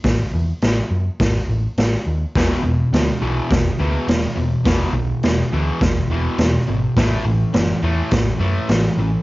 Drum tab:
HH |o-o-o-o-|o-o-o-o-|o-o-o-o-|o-o-o-o-|
SD |o-o-o-o-|o-o-o-o-|o-o-o-o-|o-o-o-o-|
BD |o---o---|o---o---|o---o---|o---o---|